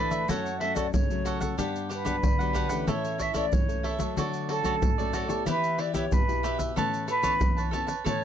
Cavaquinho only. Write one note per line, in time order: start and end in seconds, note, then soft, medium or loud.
0.00 0.11 D4 medium
0.00 0.12 A4 medium
0.00 0.11 D5 medium
0.11 0.28 A4 soft
0.11 0.28 D5 soft
0.11 0.27 E5 soft
0.28 0.59 F#4 medium
0.28 0.60 A4 medium
0.28 0.61 C#5 medium
0.28 0.61 F#5 medium
0.60 0.75 F#4 soft
0.60 0.75 A4 medium
0.60 0.75 C#5 soft
0.60 0.76 F#5 medium
0.76 0.86 F#4 medium
0.76 0.86 A4 medium
0.76 0.86 C#5 medium
0.76 0.86 F#5 medium
1.25 1.40 F#4 medium
1.25 1.41 A4 medium
1.25 1.40 C#5 medium
1.25 1.39 F#5 medium
1.41 1.57 A4 soft
1.41 1.57 C#5 soft
1.41 1.56 F#5 soft
1.58 1.88 D4 medium
1.58 1.88 G4 medium
1.58 1.89 B4 medium
1.58 1.90 F#5 medium
1.89 2.03 D4 soft
1.89 2.04 G4 soft
1.89 2.05 B4 soft
1.89 2.05 F#5 medium
2.05 2.15 D4 medium
2.05 2.15 G4 medium
2.05 2.15 B4 medium
2.05 2.15 F#5 medium
2.39 2.53 G4 soft
2.39 2.54 B4 soft
2.39 2.54 F#5 soft
2.53 2.69 D4 medium
2.53 2.70 G4 medium
2.53 2.69 B4 medium
2.53 2.68 F#5 medium
2.69 2.86 G4 soft
2.69 2.86 B4 soft
2.69 2.85 F#5 soft
2.87 3.17 E4 medium
2.87 3.18 A4 medium
2.87 3.18 C#5 medium
2.87 3.19 E5 medium
3.18 3.33 E4 soft
3.18 3.33 A4 soft
3.18 3.34 C#5 medium
3.18 3.34 E5 soft
3.34 3.44 E4 medium
3.34 3.45 A4 medium
3.34 3.45 C#5 medium
3.34 3.45 E5 medium
3.83 3.99 E4 medium
3.83 3.99 A4 medium
3.83 3.99 C#5 medium
3.83 3.98 E5 medium
3.99 4.16 A4 soft
3.99 4.16 C#5 soft
3.99 4.15 E5 soft
4.17 4.48 F#4 medium
4.17 4.49 A4 medium
4.17 4.49 C#5 medium
4.17 4.49 D5 medium
4.49 4.63 F#4 soft
4.49 4.64 A4 medium
4.49 4.64 C#5 soft
4.49 4.65 D5 medium
4.65 4.74 F#4 medium
4.65 4.74 A4 medium
4.65 4.75 C#5 medium
4.65 4.75 D5 medium
4.98 5.13 A4 soft
4.98 5.13 C#5 soft
4.98 5.13 D5 soft
5.14 5.29 F#4 medium
5.14 5.29 A4 medium
5.14 5.29 C#5 medium
5.14 5.27 D5 medium
5.28 5.45 A4 soft
5.28 5.45 C#5 soft
5.28 5.44 D5 soft
5.46 5.77 E4 medium
5.46 5.78 G4 medium
5.46 5.78 B4 medium
5.46 5.79 E5 medium
5.78 5.93 E4 soft
5.78 5.94 G4 soft
5.78 5.94 B4 soft
5.78 5.95 E5 soft
5.94 6.04 E4 medium
5.94 6.04 G4 medium
5.94 6.04 B4 medium
5.94 6.04 E5 medium
6.43 6.58 E4 medium
6.43 6.59 G4 medium
6.43 6.58 B4 medium
6.43 6.57 E5 medium
6.59 6.75 G4 soft
6.59 6.75 B4 soft
6.59 6.74 E5 soft
6.76 7.06 A4 medium
6.76 7.08 B4 medium
6.76 7.07 C#5 medium
6.76 7.08 A5 medium
7.08 7.22 A4 soft
7.08 7.23 B4 soft
7.08 7.22 C#5 soft
7.08 7.23 A5 medium
7.23 7.33 A4 medium
7.23 7.33 B4 medium
7.23 7.33 C#5 medium
7.23 7.33 A5 medium
7.57 7.71 B4 soft
7.57 7.71 C#5 soft
7.57 7.72 A5 soft
7.71 7.87 A4 medium
7.71 7.87 B4 medium
7.71 7.88 C#5 medium
7.71 7.86 A5 medium
7.87 8.04 B4 soft
7.87 8.04 C#5 soft
7.87 8.03 A5 soft
8.04 8.24 A4 medium
8.04 8.24 B4 medium
8.04 8.24 C#5 medium
8.04 8.24 A5 medium